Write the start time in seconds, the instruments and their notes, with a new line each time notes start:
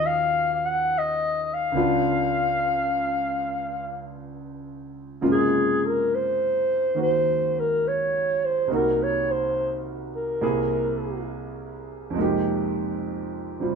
Already playing: grand piano D#2 D#3 F3 F#3 C#4
0.07 clarinet F5
0.54 clarinet F5
0.66 clarinet F#5
0.98 clarinet D#5
1.44 clarinet D#5
1.54 clarinet F5
1.72 grand piano C#2 C#3 B3
1.76 grand piano D4 F4
5.21 grand piano F#2 C3 C#3 G#3 A#3 F4
5.32 clarinet G#4
5.86 clarinet A#4
6.15 clarinet C5
6.95 grand piano D#3 A#3 F#4
7.02 clarinet C5
7.60 clarinet A#4
7.88 clarinet C#5
8.45 clarinet C5
8.68 grand piano C2 C3 A#3 D#4
8.73 grand piano F#4, clarinet A#4
9.03 clarinet C#5
9.31 clarinet C5
10.15 clarinet A#4
10.41 grand piano C2 C3 A#3 E4 G#4
12.10 grand piano F2 C3
12.15 grand piano G#3 A#3
12.20 grand piano D#4 G4
13.60 grand piano C3 G3 C4 F4